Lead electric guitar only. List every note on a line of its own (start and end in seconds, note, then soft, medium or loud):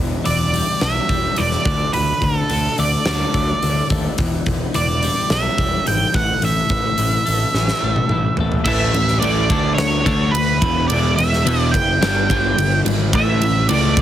0.26 0.84 D5 medium
0.83 1.40 E5 loud
1.38 1.93 D5 medium
1.94 2.23 B4 medium
2.24 2.75 A4 medium
2.80 3.87 D5 medium
4.75 5.33 D5 medium
5.32 5.87 E5 medium
5.88 6.15 G5 medium
6.15 6.41 F#5 medium
6.45 8.36 E5 medium
8.65 9.18 E5 medium
9.20 9.74 D5 medium
9.75 10.34 C#5 medium
10.31 10.85 B4 medium
10.88 11.15 D5 medium
11.16 11.62 E5 loud
11.62 11.75 D5 loud
11.71 12.80 G5 loud
13.15 13.66 E5 medium
13.69 14.02 D5 medium